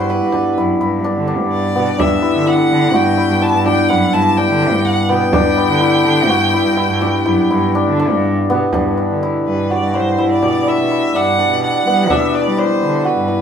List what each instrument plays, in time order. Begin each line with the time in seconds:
Already playing: harmonium G3 B3 G4, hammered dulcimer B3 D4 F#4, violin C5
0.10 hammered dulcimer E4, violin B4
0.21 cello G2
0.33 hammered dulcimer D4, frame drum
0.57 cello F#2, hammered dulcimer E4
0.80 cello G2, hammered dulcimer E4, frame drum
1.04 hammered dulcimer D4
1.16 cello D3
1.28 hammered dulcimer D4, frame drum
1.40 cello G2
1.52 violin D5, frame drum
1.75 cello B2, hammered dulcimer B3
1.98 cello G2, hammered dulcimer D4, violin E5, frame drum
2.22 hammered dulcimer E4
2.35 cello D3
2.46 hammered dulcimer E4, violin F#5
2.71 cello D3
2.94 cello G2, hammered dulcimer F#4, violin G5
3.18 hammered dulcimer E4
3.29 cello G2
3.42 hammered dulcimer E4, violin A5
3.54 cello G2
3.66 hammered dulcimer D4, violin G5, frame drum
3.89 cello F#2, hammered dulcimer E4, violin F#5
4.13 cello G2, hammered dulcimer E4, violin A5, frame drum
4.37 hammered dulcimer D4, violin G5
4.48 cello D3
4.62 hammered dulcimer D4, frame drum
4.73 cello G2
4.85 violin F#5, frame drum
5.09 cello B2, hammered dulcimer B3, violin G5
5.32 cello G2, hammered dulcimer D4, frame drum
5.58 hammered dulcimer E4
5.68 cello D3
5.80 hammered dulcimer E4
6.04 cello D3
6.28 cello G2, hammered dulcimer F#4
6.54 hammered dulcimer E4
6.64 cello G2
6.77 hammered dulcimer E4, frame drum
6.89 cello G2
7.01 hammered dulcimer D4, frame drum
7.25 cello F#2, hammered dulcimer E4
7.50 cello G2, hammered dulcimer E4
7.75 hammered dulcimer D4
7.87 cello D3
7.98 hammered dulcimer D4, frame drum
8.13 cello G2
8.50 cello B2, hammered dulcimer B3
8.73 cello G2, harmonium B2 E3 G4, hammered dulcimer D4, frame drum
8.97 hammered dulcimer E4
9.11 cello D3
9.23 hammered dulcimer E4
9.46 cello G2, violin B4
9.70 hammered dulcimer F#4, violin D5
9.82 cello G2
9.94 hammered dulcimer E4, violin C5
10.18 cello G2, hammered dulcimer E4
10.32 violin D5
10.42 cello B2, hammered dulcimer D4, frame drum
10.67 hammered dulcimer E4, violin E5
10.78 cello B2
10.91 hammered dulcimer E4
11.15 cello G2, hammered dulcimer D4, violin F#5
11.39 hammered dulcimer D4
11.50 cello B2
11.62 violin F#5, frame drum
11.86 cello G3, hammered dulcimer B3, frame drum
12.10 cello B2, hammered dulcimer D4, violin E5, frame drum
12.34 hammered dulcimer E4, violin D5
12.46 cello G3
12.57 hammered dulcimer E4, violin C5
12.82 cello D3
13.05 hammered dulcimer F#4, violin B4
13.17 cello G2
13.28 hammered dulcimer E4